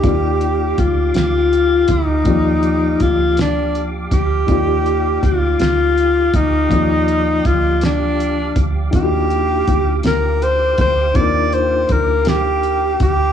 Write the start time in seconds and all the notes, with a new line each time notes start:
Already playing: G4
0.00 D#2 A#3 D#4 G4 D5 F5 D6, kick, closed hi-hat
0.06 F4 F#4
0.14 G4
0.41 closed hi-hat
0.78 D2 F4, kick, closed hi-hat
1.14 D2 F4, snare, closed hi-hat
1.53 closed hi-hat
1.88 D2 D#4, kick, closed hi-hat
2.23 D#2 F3 A#3 D5, kick, closed hi-hat
2.27 F4 G4
2.63 closed hi-hat
3.00 D2 F4, kick, closed hi-hat
3.37 D4, snare, closed hi-hat
3.75 closed hi-hat
4.11 D2 G4, kick, closed hi-hat
4.47 D#2 A#3 D#4 D5, kick, closed hi-hat
4.52 F4 G4
4.86 closed hi-hat
5.23 D2 F4, kick, closed hi-hat
5.60 D2 F4, snare, closed hi-hat
5.98 closed hi-hat
6.34 D2 D#4, kick, closed hi-hat
6.69 D#2 F3 A#3 D5, kick, closed hi-hat
6.73 F4 G4
7.08 closed hi-hat
7.45 D2 F4, kick, closed hi-hat
7.81 D4, snare, closed hi-hat
8.20 closed hi-hat
8.56 D2, kick, closed hi-hat
8.91 D#2 A#3 D4 D#4, kick, closed hi-hat
8.95 F4 F#4 G4
9.04 G4
9.30 closed hi-hat
9.67 D2, kick, closed hi-hat
10.03 D2 A#4, snare, closed hi-hat
10.42 C5, closed hi-hat
10.78 D2 C5, kick, closed hi-hat
11.14 D#2 A#3 D4 D#4 D5, kick, closed hi-hat
11.19 F4 A#4
11.52 C5, closed hi-hat
11.89 D2 A#4, kick, closed hi-hat
12.25 G4, snare, closed hi-hat
12.63 closed hi-hat
13.00 D2 G4, kick, closed hi-hat